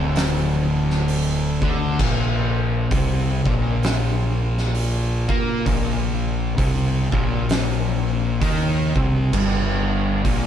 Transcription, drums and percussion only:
0.16 snare, open hi-hat
0.90 snare
1.08 open hi-hat
1.62 kick
1.99 kick, crash
2.91 kick, open hi-hat
3.46 kick
3.83 snare, open hi-hat
4.58 snare
4.75 open hi-hat
5.29 kick
5.66 kick, open hi-hat
6.58 kick, open hi-hat
7.12 kick
7.49 snare, open hi-hat
8.41 kick, open hi-hat
8.96 kick
9.33 kick, crash
10.25 kick, open hi-hat

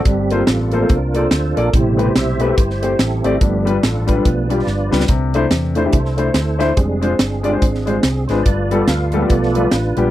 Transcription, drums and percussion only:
0.05 kick, closed hi-hat
0.30 closed hi-hat
0.47 snare, closed hi-hat
0.72 closed hi-hat
0.89 kick, closed hi-hat
1.15 closed hi-hat
1.31 snare, closed hi-hat
1.57 closed hi-hat
1.73 kick, closed hi-hat
1.99 closed hi-hat
2.16 snare, closed hi-hat
2.40 closed hi-hat
2.58 kick, closed hi-hat
2.70 snare
2.83 closed hi-hat
2.99 snare, closed hi-hat
3.24 closed hi-hat
3.41 kick, closed hi-hat
3.67 closed hi-hat
3.83 snare, closed hi-hat
4.08 kick, closed hi-hat
4.25 kick, closed hi-hat
4.50 closed hi-hat
4.67 snare
4.92 snare
5.00 snare
5.08 kick, closed hi-hat
5.34 closed hi-hat
5.51 snare, closed hi-hat
5.75 closed hi-hat
5.93 kick, closed hi-hat
6.05 snare
6.18 closed hi-hat
6.34 snare, closed hi-hat
6.60 snare, closed hi-hat
6.77 kick, closed hi-hat
7.03 closed hi-hat
7.19 snare, closed hi-hat
7.44 closed hi-hat
7.62 kick, closed hi-hat
7.75 snare
7.87 closed hi-hat
8.03 snare, closed hi-hat
8.29 snare, closed hi-hat
8.46 kick, closed hi-hat
8.71 closed hi-hat
8.88 snare, closed hi-hat
9.12 closed hi-hat
9.30 kick, closed hi-hat
9.43 snare
9.55 closed hi-hat
9.71 snare, closed hi-hat
9.97 closed hi-hat

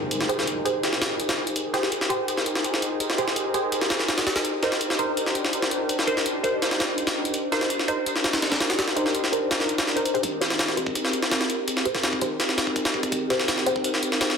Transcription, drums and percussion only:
0.11 closed hi-hat
0.21 snare
0.29 closed hi-hat
0.39 snare
0.47 closed hi-hat
0.66 closed hi-hat
0.83 snare, closed hi-hat
0.93 snare
1.02 snare, closed hi-hat
1.20 closed hi-hat
1.29 snare, closed hi-hat
1.47 closed hi-hat
1.56 closed hi-hat
1.74 snare, closed hi-hat
1.83 snare
1.92 closed hi-hat
2.01 snare
2.10 closed hi-hat
2.28 closed hi-hat
2.37 snare
2.46 closed hi-hat
2.55 snare
2.64 closed hi-hat
2.74 snare
2.82 closed hi-hat
3.00 closed hi-hat
3.10 snare
3.18 closed hi-hat
3.28 snare
3.36 closed hi-hat
3.54 closed hi-hat
3.72 closed hi-hat
3.82 snare
3.90 snare, closed hi-hat
4.00 snare
4.08 snare, closed hi-hat
4.18 snare, closed hi-hat
4.27 snare, closed hi-hat
4.36 snare, closed hi-hat
4.45 closed hi-hat
4.63 snare, closed hi-hat
4.72 snare
4.81 closed hi-hat
4.90 snare
4.99 closed hi-hat
5.17 closed hi-hat
5.26 snare
5.35 closed hi-hat
5.45 snare
5.53 closed hi-hat
5.62 snare
5.71 closed hi-hat
5.89 closed hi-hat
5.99 snare
6.08 closed hi-hat
6.17 snare
6.26 closed hi-hat
6.44 closed hi-hat
6.62 snare, closed hi-hat
6.71 snare
6.80 snare, closed hi-hat
6.98 closed hi-hat
7.07 snare, closed hi-hat
7.25 closed hi-hat
7.34 closed hi-hat
7.52 snare, closed hi-hat
7.61 snare
7.70 closed hi-hat
7.79 snare
7.88 closed hi-hat
8.06 closed hi-hat
8.16 snare
8.24 snare, closed hi-hat
8.33 snare, closed hi-hat
8.42 snare, closed hi-hat
8.52 snare, closed hi-hat
8.60 snare, closed hi-hat
8.70 snare, closed hi-hat
8.79 snare, closed hi-hat
8.88 snare
8.97 closed hi-hat
9.06 snare
9.15 closed hi-hat
9.24 snare
9.33 closed hi-hat
9.51 snare, closed hi-hat
9.60 snare
9.69 closed hi-hat
9.78 snare, closed hi-hat
9.87 snare
9.97 closed hi-hat
10.05 closed hi-hat
10.15 closed hi-hat
10.23 kick, closed hi-hat
10.41 snare, closed hi-hat
10.50 snare
10.59 snare, closed hi-hat
10.69 snare
10.77 closed hi-hat
10.87 kick
10.95 closed hi-hat
11.05 snare
11.13 closed hi-hat
11.23 snare
11.31 snare, closed hi-hat
11.41 snare
11.50 closed hi-hat
11.68 closed hi-hat
11.77 snare
11.85 kick, closed hi-hat
11.95 snare
12.03 snare, closed hi-hat
12.13 kick
12.21 kick, closed hi-hat
12.40 snare, closed hi-hat
12.49 snare
12.58 snare, closed hi-hat
12.67 kick
12.76 kick, closed hi-hat
12.85 snare, closed hi-hat
12.94 kick
13.03 kick, closed hi-hat
13.12 kick, closed hi-hat
13.30 snare, closed hi-hat
13.39 snare
13.48 snare, closed hi-hat
13.58 snare
13.66 closed hi-hat
13.76 kick
13.84 closed hi-hat
13.94 snare
14.03 closed hi-hat
14.12 snare
14.21 snare, closed hi-hat
14.30 snare

